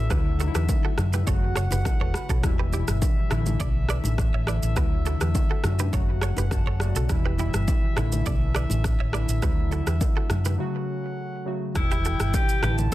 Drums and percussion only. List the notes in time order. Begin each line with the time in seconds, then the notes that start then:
0.10 kick, cross-stick, low conga, shaker
0.39 low bongo, shaker
0.55 cross-stick, shaker
0.69 kick, high bongo, shaker
0.98 cross-stick, low bongo, shaker
1.13 low bongo, shaker
1.27 kick, low conga, shaker
1.56 cross-stick, shaker
1.71 low bongo, shaker
1.85 kick, cross-stick, high bongo, low conga, shaker
2.14 cross-stick, shaker
2.29 kick, shaker
2.43 kick, cross-stick, low conga, shaker
2.72 low bongo, shaker
2.88 cross-stick, shaker
3.02 kick, high bongo, shaker
3.31 cross-stick, low bongo, shaker
3.46 low bongo, shaker
3.60 kick, low conga, shaker
3.89 cross-stick, shaker
4.04 low bongo, shaker
4.18 kick, cross-stick, high bongo, low conga, shaker
4.47 cross-stick, shaker
4.63 shaker
4.76 kick, cross-stick, low conga, shaker
5.05 low bongo, shaker
5.21 cross-stick, shaker
5.35 kick, high bongo, shaker
5.64 cross-stick, low bongo, shaker
5.79 low bongo, shaker
5.93 kick, low conga, shaker
6.21 cross-stick, shaker
6.37 low bongo, shaker
6.51 kick, cross-stick, high bongo, low conga, shaker
6.80 cross-stick, shaker
6.96 shaker
7.09 kick, cross-stick, low conga, shaker
7.38 low bongo, shaker
7.54 cross-stick, shaker
7.68 kick, high bongo, shaker
7.97 cross-stick, low bongo, shaker
8.12 low bongo, shaker
8.26 kick, low conga, shaker
8.55 cross-stick, shaker
8.70 low bongo, shaker
8.84 kick, cross-stick, high bongo, low conga, shaker
9.13 cross-stick, shaker
9.29 shaker
9.43 kick, cross-stick, low conga, shaker
9.71 low bongo, shaker
9.87 cross-stick, shaker
10.01 kick, high bongo, shaker
10.30 cross-stick, low bongo, shaker
10.45 low bongo, shaker
11.76 kick, cross-stick, low conga, shaker
11.91 shaker
12.05 shaker
12.20 cross-stick, shaker
12.34 kick, high bongo, shaker
12.49 shaker
12.63 cross-stick, low bongo, shaker
12.78 low bongo, shaker